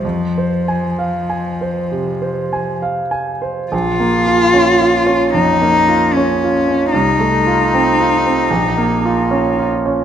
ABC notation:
X:1
M:4/4
L:1/8
Q:1/4=74
K:Fm
V:1 name="Cello"
F,6 z2 | [K:Bbm] F4 E2 D2 | E6- E z |]
V:2 name="Grand piano"
(3F,, c a (3f a c (3C, c a (3f a c | [K:Bbm] (3B,,, B, F (3D F D (3F,, B, F (3D F D | (3C,, =A, F (3C F C (3B,,, B, F (3D F D |]